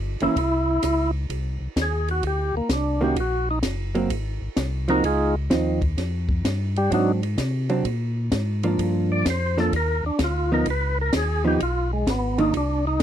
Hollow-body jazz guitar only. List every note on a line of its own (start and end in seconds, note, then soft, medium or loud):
0.22 0.35 E3 medium
0.22 0.35 A#3 medium
0.22 0.35 C#4 medium
3.01 3.15 D#3 medium
3.01 3.15 A#3 medium
3.01 3.16 C#4 medium
3.01 3.16 F#4 medium
3.95 4.09 F#3 medium
3.95 4.09 A#3 medium
3.95 4.09 C4 medium
4.88 5.02 F3 medium
4.88 5.03 C4 medium
4.88 5.03 D#4 medium
5.50 5.79 F3 medium
5.50 5.79 C4 medium
5.50 5.79 D#4 medium
6.91 7.19 F#3 soft
6.91 7.20 C4 soft
6.91 7.20 D4 medium
7.70 7.83 F#3 medium
7.70 7.84 C4 medium
7.70 7.84 D4 medium
8.64 9.23 F3 medium
8.64 9.23 A#3 medium
8.64 9.23 D4 medium
9.57 9.71 F3 medium
9.57 9.71 A#3 medium
9.57 9.71 D4 medium
10.52 10.65 F3 medium
10.52 10.65 B3 medium
10.52 10.65 D#4 medium
11.44 11.58 F3 medium
11.44 11.58 B3 medium
11.44 11.59 D#4 medium
12.38 12.52 D#3 medium
12.38 12.52 A#3 medium
12.38 12.52 D4 medium